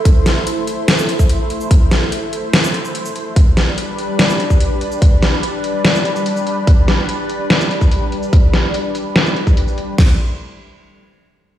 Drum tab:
CC |----------------|----------------|----------------|----------------|
HH |x-x-x-x-x-x-x-x-|x-x-x-x-x-x-x-x-|x-x-x-x-x-x-x-x-|x-x-x-x-x-x-x-x-|
SH |---------x-x---x|---------x-x-x--|---------x-x---x|---------x-x-x--|
SD |--o-----o-------|--o-----o-------|--o-----o-------|--o-----o-------|
BD |o----------o----|o---------------|o----------o----|o---------------|

CC |----------------|----------------|x---------------|
HH |x-x-x-x-x-x-x-x-|x-x-x-x-x-x-x-x-|----------------|
SH |---------x-x---x|------x--x-x-x--|----------------|
SD |--o-----o-------|--o-----o-------|o---------------|
BD |o----------o----|o----------o----|o---------------|